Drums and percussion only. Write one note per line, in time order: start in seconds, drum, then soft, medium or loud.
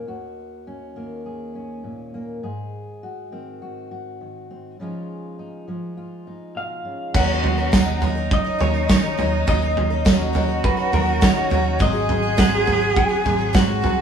7.14 kick loud
7.14 floor tom loud
7.14 crash loud
7.44 floor tom medium
7.73 kick loud
7.73 snare loud
7.73 floor tom medium
7.73 tambourine loud
8.02 floor tom medium
8.31 kick loud
8.31 floor tom medium
8.61 floor tom medium
8.90 kick loud
8.90 snare loud
8.90 floor tom medium
8.90 tambourine loud
9.19 floor tom medium
9.48 kick loud
9.48 floor tom loud
9.77 floor tom medium
10.06 kick loud
10.06 snare loud
10.06 floor tom medium
10.06 tambourine loud
10.35 floor tom medium
10.64 kick loud
10.64 floor tom medium
10.93 floor tom loud
11.22 kick loud
11.22 snare loud
11.22 floor tom medium
11.22 tambourine loud
11.51 floor tom medium
11.80 kick loud
11.80 floor tom medium
12.09 floor tom medium
12.38 kick loud
12.38 snare loud
12.38 floor tom medium
12.38 tambourine loud
12.67 floor tom loud
12.96 kick loud
12.96 floor tom medium
13.26 floor tom loud
13.54 kick loud
13.54 snare loud
13.54 floor tom loud
13.54 tambourine loud
13.84 floor tom medium